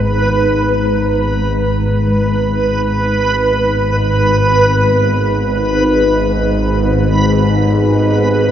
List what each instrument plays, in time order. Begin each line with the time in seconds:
Already playing: synth drone G#1 G#2, ambient pad B3 D#4 G#4 A#5, synth texture B4
4.79 ambient pad B4
6.65 ambient pad G4